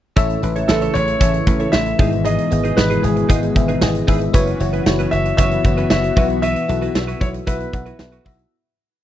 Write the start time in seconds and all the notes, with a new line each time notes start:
0.16 A1 A2 C#3 E3 A3 C#4 E4 A4 C#5 E5, kick, closed hi-hat
0.30 closed hi-hat
0.42 A1 C#4 E4 A4 B4, muted clean electric guitar stroke, closed hi-hat
0.56 E4 A4 C#5, closed hi-hat
0.68 A1 C#4 E4 A4 B4, snare
0.82 E4 A4 C#5, closed hi-hat
0.94 A1 C#4 E4 A4 C#5 E5, closed hi-hat
1.08 muted clean electric guitar stroke, closed hi-hat
1.20 A1 C#4 E4 A4 C#5 E5, kick, closed hi-hat
1.34 muted clean electric guitar stroke, closed hi-hat
1.46 A1 C#4 E4 A4 B4, muted clean electric guitar stroke, kick, closed hi-hat
1.60 E4 A4 C#5, closed hi-hat
1.72 A1 C#4 E4 A4 E5, muted clean electric guitar stroke, snare
1.86 muted clean electric guitar stroke, closed hi-hat
1.99 G#1 G#2 B2 G#3 B3 D#4 E4 G#4 B4 D#5, kick, open hi-hat
2.12 muted clean electric guitar stroke, closed hi-hat
2.25 D#4 G#4 B4 D#5, closed hi-hat
2.38 closed hi-hat
2.51 G#1 B3 E4 G#4 D#5, muted clean electric guitar stroke, closed hi-hat
2.64 D#4 G#4 B4, closed hi-hat
2.77 G#1 B3 E4 G#4 B4 D#5, muted clean electric guitar stroke, snare
2.90 D#4 G#4 B4, closed hi-hat
3.03 G#1 B3 E4 G#4 B4, closed hi-hat
3.16 muted clean electric guitar stroke, closed hi-hat
3.29 G#1 B3 D#4 E4 G#4 B4 D#5, kick, closed hi-hat
3.42 muted clean electric guitar stroke, closed hi-hat
3.55 G#1 B3 E4 G#4 E5, muted clean electric guitar stroke, kick, closed hi-hat
3.68 D#4 G#4 B4, closed hi-hat
3.81 G#1 B3 E4 G#4 D#5, snare
3.95 muted clean electric guitar stroke, closed hi-hat
4.07 G#1 B3 D#4 E4 G#4 B4 E5, kick, open hi-hat
4.21 muted clean electric guitar stroke, closed hi-hat
4.33 F#1 E3 B3 C#4 E4 F#4 B4 C#5, kick, closed hi-hat
4.47 closed hi-hat
4.60 F#1 B3 E4 F#4 C#5, muted clean electric guitar stroke, closed hi-hat
4.73 C#4 E4 B4, closed hi-hat
4.86 F#1 B3 E4 F#4 C#5, muted clean electric guitar stroke, snare
4.99 C#4 E4 B4, closed hi-hat
5.11 F#1 B3 E4 F#4 C#5 E5, closed hi-hat
5.25 muted clean electric guitar stroke, closed hi-hat
5.37 F#1 B3 C#4 E4 F#4 B4 C#5 E5, kick, closed hi-hat
5.51 muted clean electric guitar stroke, closed hi-hat
5.64 F#1 B3 E4 F#4 C#5, muted clean electric guitar stroke, kick, closed hi-hat
5.77 C#4 E4 B4, closed hi-hat
5.90 F#1 B3 E4 F#4 C#5 E5, muted clean electric guitar stroke, snare
6.03 muted clean electric guitar stroke, closed hi-hat
6.16 B1 B2 B3 E4 F#4 B4 E5, kick, open hi-hat
6.29 muted clean electric guitar stroke, closed hi-hat
6.42 E4 F#4 B4 E5, closed hi-hat
6.56 closed hi-hat
6.68 B1 B3 E4 F#4 A4, muted clean electric guitar stroke, closed hi-hat
6.82 E4 F#4 B4, closed hi-hat
6.95 B1 B3 E4 F#4 E5, muted clean electric guitar stroke, snare
7.07 E4 F#4 B4, closed hi-hat
7.21 B1 B3 E4 F#4 C#5 E5, muted clean electric guitar stroke, kick, closed hi-hat
7.33 muted clean electric guitar stroke, closed hi-hat
7.47 B1 B3 E4 F#4 B4 E5, kick, closed hi-hat
7.60 muted clean electric guitar stroke, closed hi-hat
7.73 B1 B3 E4 F#4 F#5, muted clean electric guitar stroke, kick, closed hi-hat
7.86 E4 F#4 B4, closed hi-hat
7.99 B1 B3 E4 F#4 A4, muted clean electric guitar stroke, snare
8.12 E4 F#4 B4, closed hi-hat
8.25 B1 B3 E4 F#4 B4 E5, kick, open hi-hat
8.39 muted clean electric guitar stroke